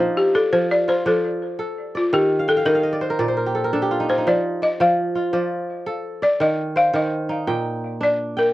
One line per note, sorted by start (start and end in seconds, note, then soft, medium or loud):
0.00 0.51 F3 medium
0.00 1.49 D4 medium
0.00 0.41 D#4 medium
0.00 0.88 F4 medium
0.00 0.95 G4 medium
0.00 0.45 A#4 medium
0.00 0.28 C5 medium
0.17 0.35 G4 medium
0.35 0.53 A4 medium
0.35 1.05 D5 medium
0.53 1.05 F3 medium
0.53 0.71 C5 medium
0.71 0.89 D5 medium
0.88 2.39 F4 medium
0.88 1.05 C5 loud
1.06 2.18 F3 medium
1.06 1.56 A4 medium
1.06 1.94 D5 medium
1.59 2.91 A4 medium
1.95 2.14 F4 medium
1.95 2.71 D5 medium
2.13 2.64 D#3 medium
2.13 2.50 G4 medium
2.39 2.56 F5 medium
2.48 2.67 A4 loud
2.48 3.41 G5 medium
2.57 2.74 F5 medium
2.65 3.25 D#3 medium
2.65 3.16 A#4 loud
2.65 2.83 D#5 medium
2.75 3.75 F5 medium
2.83 3.25 D#5 medium
2.93 3.19 D5 medium
3.01 3.28 C5 medium
3.10 3.37 A#4 medium
3.19 4.32 A#2 medium
3.19 4.06 D5 medium
3.28 4.47 C5 medium
3.37 3.61 A#4 medium
3.46 3.82 G4 medium
3.55 3.73 A4 medium
3.64 4.91 A#4 medium
3.73 4.24 D4 medium
3.73 5.05 A4 medium
3.82 5.23 G4 medium
3.91 4.09 F4 medium
4.00 4.17 D#4 medium
4.09 5.15 F4 medium
4.09 4.28 C5 medium
4.18 4.68 D#4 medium
4.27 4.79 F3 medium
4.27 4.64 D5 medium
4.62 5.33 D5 medium
4.62 4.81 D#5 medium
4.80 5.32 F3 medium
4.80 5.30 F5 medium
5.15 6.67 F4 medium
5.33 6.46 F3 medium
5.33 6.22 D5 medium
5.86 7.18 A4 medium
6.22 7.00 D5 medium
6.22 6.42 D5 medium
6.40 6.92 D#3 medium
6.40 6.78 D#5 loud
6.76 7.95 C5 medium
6.76 6.95 F5 medium
6.94 7.53 D#3 medium
6.94 7.45 D#5 medium
7.29 8.07 D#4 medium
7.47 8.53 A#2 medium
7.47 8.36 G5 medium
8.01 8.53 D4 medium
8.01 8.39 D5 medium
8.37 8.53 A#4 medium
8.37 8.53 G5 medium